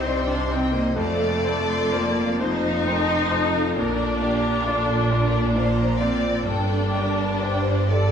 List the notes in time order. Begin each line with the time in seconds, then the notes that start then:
Already playing: C2 C3 C4 D4 D#4 C5
0.06 D4 C5 G5
0.28 D4
0.32 C6
0.51 C4 D#4 C5 G5
0.73 A#3 D#5
0.95 F1 F2 A3 C5 D5 F5
1.21 F5
1.44 C4 C5 A5
1.68 C6
1.92 A#3 F4 C5 A5
2.18 F5
2.39 D#4 F4 C5
2.65 F5
2.85 C4 A#4 C5 A5
3.09 C6
3.30 F4 A4 C5 A5
3.53 F5
3.75 A#1 A#2 D4 A#4
4.00 D5
4.20 A#3 G4 D5 F5
4.42 A#5
4.64 F4 A4 D5 F5
4.89 D5
5.09 F4 A#4 D5
5.31 D5
5.55 A#3 C5 D5 F5
5.77 A#5
5.98 C4 F4 D5 F5
6.22 D5
6.44 G1 G2 D4 A4 G5
6.67 D5
6.92 G3 A#4 D5 G5
7.16 A5
7.42 G4 C5 D5 G5
7.66 D5
7.90 G4 A4 D5